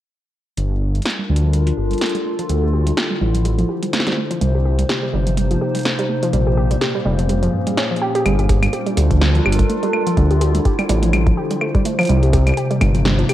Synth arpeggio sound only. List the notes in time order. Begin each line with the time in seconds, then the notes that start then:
0.57 G3
0.71 G4
0.81 G4
0.95 G3
1.05 G4
1.19 G3
1.29 G3
1.43 F3
1.53 G3
1.67 F3
1.77 G4
1.91 G3
2.01 A3
2.15 G3
2.25 A3
2.39 F3
2.49 G3
2.63 G4
2.73 G4
2.87 G3
2.97 G4
3.11 G3
3.21 G3
3.35 F3
3.45 G3
3.59 F3
3.69 G4
3.83 G3
3.93 A3
4.07 G3
4.17 A3
4.31 F3
4.41 G3
4.55 G4
4.65 G4
4.79 G3
4.89 G4
5.03 G3
5.13 G3
5.27 F3
5.37 G3
5.51 F3
5.61 G4
5.75 G3
5.85 A3
5.99 G3
6.09 A3
6.23 F3
6.33 G3
6.47 G4
6.57 G4
6.71 G3
6.81 G4
6.95 G3
7.05 G3
7.19 F3
7.29 G3
7.43 F3
7.53 G2
7.67 G3
7.77 C#4
7.91 F3
8.01 G4
8.15 G4
8.25 G3
8.39 G4
8.49 G4
8.63 G3
8.73 G4
8.87 G3
8.97 G3
9.11 F3
9.21 G3
9.35 F3
9.45 G4
9.59 G3
9.69 A3
9.83 G3
9.93 A3
10.07 F3
10.17 G3
10.31 G4
10.41 G4
10.55 G3
10.65 G4
10.79 G3
10.89 G3
11.03 F3
11.13 G3
11.27 F3
11.37 G4
11.51 G3
11.61 A3
11.75 G3
11.85 A3
11.99 F3
12.09 G3
12.23 G4
12.33 G4
12.47 G3
12.57 G4
12.71 G3
12.81 G3
12.95 F3
13.05 G3
13.19 F3
13.29 G4